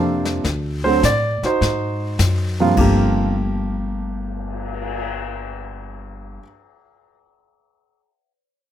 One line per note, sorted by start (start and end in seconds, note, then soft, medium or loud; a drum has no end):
0.00 0.43 F2 medium
0.00 0.41 C3 medium
0.00 0.41 F3 medium
0.00 0.42 A#3 medium
0.00 0.42 D4 medium
0.00 0.41 F4 medium
0.00 0.41 A4 medium
0.00 0.21 C5 medium
0.25 snare soft
0.44 1.01 D2 medium
0.44 brush sweep soft
0.44 kick soft
0.44 snare soft
0.84 1.01 D3 medium
0.84 1.02 F#3 medium
0.84 1.02 A3 medium
0.84 1.02 C4 medium
0.84 1.02 C5 medium
1.03 1.40 A2 medium
1.03 1.44 D5 medium
1.03 kick soft
1.03 snare medium
1.03 hi-hat pedal medium
1.43 2.56 D#4 medium
1.43 2.56 F#4 medium
1.43 2.56 C5 medium
1.43 muted upright bass stroke soft
1.43 snare soft
1.61 2.18 G#2 medium
1.61 brush sweep soft
1.61 kick soft
1.61 snare soft
2.19 2.76 F#2 medium
2.19 kick soft
2.19 snare medium
2.19 hi-hat pedal medium
2.60 2.76 G2 medium
2.60 3.33 C3 medium
2.60 2.77 F3 medium
2.60 2.79 A#3 medium
2.60 3.33 F4 medium
2.77 6.37 G1 medium
2.77 6.41 G2 medium
2.77 6.42 F3 medium
2.77 6.43 A3 medium
2.77 6.44 A#3 medium
2.77 6.38 G4 medium
2.77 kick medium
2.77 crash medium
3.16 cymbal swell soft